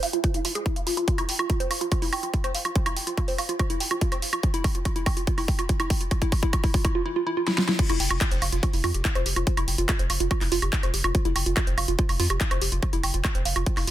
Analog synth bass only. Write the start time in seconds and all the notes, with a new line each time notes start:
7.90 F1
8.00 F1
8.11 F1
8.31 F1
8.42 F1
8.52 F1
8.73 F1
8.84 F2
8.94 F1
9.15 F1
9.26 F1
9.36 F1
9.57 F1
9.68 F1
9.78 F1
9.99 F1
10.10 F1
10.20 F1
10.41 F1
10.52 F1
10.62 F1
10.83 F1
10.94 F1
11.04 F1
11.25 F1
11.36 F1
11.46 F1
11.67 F1
11.78 F1
11.88 F1
12.09 F1
12.20 F2
12.30 F1
12.51 F1
12.62 F1
12.72 F1
12.93 F1
13.04 F1
13.14 F1
13.35 F1
13.46 F1
13.56 F1
13.77 F1
13.87 F1